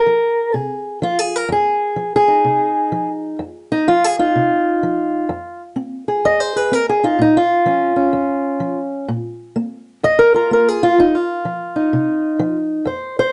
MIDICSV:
0, 0, Header, 1, 2, 480
1, 0, Start_track
1, 0, Key_signature, -4, "minor"
1, 0, Tempo, 474308
1, 1509, Time_signature, 4, 2, 24, 8
1, 13482, End_track
2, 0, Start_track
2, 0, Title_t, "Steel-string acoustic guitar"
2, 0, Program_c, 0, 25
2, 0, Note_on_c, 0, 70, 90
2, 65, Note_on_c, 0, 53, 57
2, 512, Note_off_c, 0, 53, 0
2, 546, Note_on_c, 0, 48, 64
2, 553, Note_off_c, 0, 70, 0
2, 553, Note_on_c, 0, 68, 92
2, 993, Note_off_c, 0, 48, 0
2, 1031, Note_off_c, 0, 68, 0
2, 1031, Note_on_c, 0, 53, 60
2, 1045, Note_on_c, 0, 65, 79
2, 1201, Note_off_c, 0, 65, 0
2, 1201, Note_on_c, 0, 68, 87
2, 1374, Note_off_c, 0, 68, 0
2, 1374, Note_on_c, 0, 70, 81
2, 1476, Note_off_c, 0, 53, 0
2, 1504, Note_on_c, 0, 41, 68
2, 1521, Note_off_c, 0, 70, 0
2, 1541, Note_on_c, 0, 68, 90
2, 1952, Note_off_c, 0, 41, 0
2, 1985, Note_on_c, 0, 53, 52
2, 2165, Note_off_c, 0, 68, 0
2, 2184, Note_on_c, 0, 68, 93
2, 2307, Note_on_c, 0, 63, 43
2, 2433, Note_off_c, 0, 53, 0
2, 2474, Note_on_c, 0, 48, 59
2, 2917, Note_off_c, 0, 48, 0
2, 2954, Note_on_c, 0, 53, 61
2, 3127, Note_off_c, 0, 68, 0
2, 3398, Note_off_c, 0, 53, 0
2, 3431, Note_on_c, 0, 41, 64
2, 3461, Note_off_c, 0, 63, 0
2, 3762, Note_on_c, 0, 63, 90
2, 3876, Note_off_c, 0, 41, 0
2, 3916, Note_off_c, 0, 63, 0
2, 3921, Note_on_c, 0, 53, 53
2, 3926, Note_on_c, 0, 65, 92
2, 4092, Note_off_c, 0, 65, 0
2, 4092, Note_on_c, 0, 68, 85
2, 4239, Note_on_c, 0, 63, 44
2, 4240, Note_off_c, 0, 68, 0
2, 4244, Note_on_c, 0, 65, 83
2, 4361, Note_off_c, 0, 53, 0
2, 4408, Note_on_c, 0, 48, 63
2, 4845, Note_off_c, 0, 48, 0
2, 4887, Note_on_c, 0, 53, 63
2, 5325, Note_off_c, 0, 53, 0
2, 5341, Note_off_c, 0, 63, 0
2, 5354, Note_on_c, 0, 41, 67
2, 5678, Note_off_c, 0, 65, 0
2, 5798, Note_off_c, 0, 41, 0
2, 5828, Note_on_c, 0, 60, 58
2, 6153, Note_on_c, 0, 68, 47
2, 6275, Note_off_c, 0, 60, 0
2, 6325, Note_on_c, 0, 41, 64
2, 6327, Note_on_c, 0, 75, 97
2, 6477, Note_off_c, 0, 75, 0
2, 6477, Note_on_c, 0, 72, 80
2, 6636, Note_off_c, 0, 68, 0
2, 6640, Note_on_c, 0, 68, 41
2, 6645, Note_off_c, 0, 72, 0
2, 6645, Note_on_c, 0, 71, 82
2, 6764, Note_off_c, 0, 41, 0
2, 6795, Note_on_c, 0, 60, 63
2, 6798, Note_off_c, 0, 71, 0
2, 6811, Note_off_c, 0, 68, 0
2, 6811, Note_on_c, 0, 70, 86
2, 6961, Note_off_c, 0, 70, 0
2, 6977, Note_on_c, 0, 68, 84
2, 7119, Note_on_c, 0, 63, 46
2, 7124, Note_off_c, 0, 68, 0
2, 7126, Note_on_c, 0, 65, 75
2, 7239, Note_off_c, 0, 60, 0
2, 7260, Note_off_c, 0, 63, 0
2, 7274, Note_on_c, 0, 46, 67
2, 7278, Note_off_c, 0, 65, 0
2, 7301, Note_on_c, 0, 63, 90
2, 7446, Note_off_c, 0, 63, 0
2, 7457, Note_on_c, 0, 65, 83
2, 7718, Note_off_c, 0, 46, 0
2, 7748, Note_on_c, 0, 53, 57
2, 7756, Note_on_c, 0, 61, 43
2, 8053, Note_off_c, 0, 61, 0
2, 8057, Note_on_c, 0, 61, 47
2, 8195, Note_off_c, 0, 53, 0
2, 8225, Note_on_c, 0, 41, 63
2, 8673, Note_off_c, 0, 41, 0
2, 8703, Note_on_c, 0, 53, 62
2, 8883, Note_off_c, 0, 65, 0
2, 9152, Note_off_c, 0, 53, 0
2, 9169, Note_off_c, 0, 61, 0
2, 9194, Note_on_c, 0, 46, 70
2, 9637, Note_off_c, 0, 46, 0
2, 9672, Note_on_c, 0, 58, 60
2, 10116, Note_off_c, 0, 58, 0
2, 10155, Note_on_c, 0, 41, 67
2, 10161, Note_on_c, 0, 75, 99
2, 10310, Note_on_c, 0, 70, 98
2, 10315, Note_off_c, 0, 75, 0
2, 10467, Note_on_c, 0, 65, 46
2, 10469, Note_off_c, 0, 70, 0
2, 10481, Note_on_c, 0, 70, 90
2, 10597, Note_off_c, 0, 41, 0
2, 10635, Note_off_c, 0, 70, 0
2, 10636, Note_on_c, 0, 58, 63
2, 10658, Note_on_c, 0, 70, 90
2, 10813, Note_off_c, 0, 70, 0
2, 10813, Note_on_c, 0, 68, 93
2, 10960, Note_off_c, 0, 65, 0
2, 10960, Note_on_c, 0, 65, 95
2, 10961, Note_off_c, 0, 68, 0
2, 11078, Note_off_c, 0, 58, 0
2, 11112, Note_on_c, 0, 41, 68
2, 11114, Note_off_c, 0, 65, 0
2, 11129, Note_on_c, 0, 63, 92
2, 11278, Note_off_c, 0, 63, 0
2, 11281, Note_on_c, 0, 65, 96
2, 11555, Note_off_c, 0, 41, 0
2, 11588, Note_on_c, 0, 53, 55
2, 11900, Note_on_c, 0, 63, 47
2, 12033, Note_off_c, 0, 53, 0
2, 12073, Note_on_c, 0, 48, 63
2, 12515, Note_off_c, 0, 48, 0
2, 12543, Note_on_c, 0, 53, 70
2, 12713, Note_off_c, 0, 65, 0
2, 12990, Note_off_c, 0, 53, 0
2, 13008, Note_off_c, 0, 63, 0
2, 13008, Note_on_c, 0, 41, 66
2, 13024, Note_on_c, 0, 72, 48
2, 13338, Note_off_c, 0, 72, 0
2, 13350, Note_on_c, 0, 72, 102
2, 13462, Note_off_c, 0, 41, 0
2, 13482, Note_off_c, 0, 72, 0
2, 13482, End_track
0, 0, End_of_file